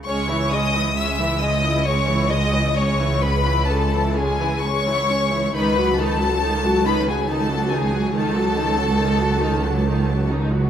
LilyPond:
<<
  \new Staff \with { instrumentName = "Violin section" } { \time 12/8 \key cis \minor \tempo 4. = 45 cis'''8 dis'''8 e'''8 dis'''8 cis'''8 dis'''8 cis'''8 b''8 a''8 gis''8 cis'''4 | b''8 a''4 b''16 gis''16 a''8 gis''8 a''2~ a''8 r8 | }
  \new Staff \with { instrumentName = "Violin section" } { \time 12/8 \key cis \minor cis''8 dis''8 e''8 dis''8 cis''8 dis''8 cis''8 b'8 a'8 gis'8 cis''4 | b'8 a'4 b'16 gis'16 a'8 gis'8 a'2~ a'8 r8 | }
  \new Staff \with { instrumentName = "Viola section" } { \time 12/8 \key cis \minor <gis cis'>16 <e e'>16 <gis cis'>16 <e e'>16 <gis cis'>16 <e e'>16 <gis cis'>16 <e e'>16 <gis cis'>16 <e e'>16 <gis cis'>16 <e e'>16 <gis cis'>16 <e e'>16 <gis cis'>16 <e e'>16 <gis cis'>16 <e e'>16 <gis cis'>16 <e e'>16 <gis cis'>16 <e e'>16 <gis cis'>16 <e e'>16 | <dis dis'>16 <fis fis'>16 <dis dis'>16 <fis fis'>16 <dis dis'>16 <fis fis'>16 <dis dis'>16 <fis fis'>16 <dis dis'>16 <fis fis'>16 <dis dis'>16 <fis fis'>16 <dis dis'>16 <fis fis'>16 <dis dis'>16 <fis fis'>16 <dis dis'>16 <fis fis'>16 <dis dis'>16 <fis fis'>16 <dis dis'>16 <fis fis'>16 <dis dis'>16 <fis fis'>16 | }
  \new Staff \with { instrumentName = "Cello section" } { \clef bass \time 12/8 \key cis \minor cis,1. | cis,1. | }
  \new Staff \with { instrumentName = "Double bass section" } { \clef bass \time 12/8 \key cis \minor cis,1. | cis,1. | }
>>